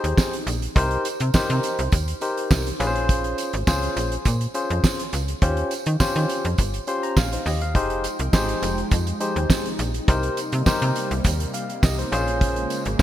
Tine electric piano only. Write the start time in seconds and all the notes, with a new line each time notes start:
Already playing: D#4 G4 G#4 C5
0.75 D#4 G4 A#4 C5
1.34 D#4 G4 A#4 C5
2.21 D#4 G4 A#4 C5
2.80 C#4 F4 G#4 B4
2.87 C5
3.67 C#4 F4 G#4 C5
4.55 C#4 F4 G#4 C5
5.42 C#4 F4 G4 C5
6.00 C#4 F4 G4 C5
6.88 C#4 F4 G4 C5 C6
7.03 A#5
7.17 F5
7.32 D#4 C5
7.46 G4 D#5
7.62 F5
7.75 D#4 G4 G#4 C5
8.33 D#4 G4 G#4 C5
9.20 D#4 G4 G#4 C5
10.08 D#4 G4 A#4 C5
10.66 D#4 G4 A#4 C5
11.54 F5
11.83 G4 D#5
11.99 D#4 C5
12.12 C#4 F4 G#4 C5
12.99 C#4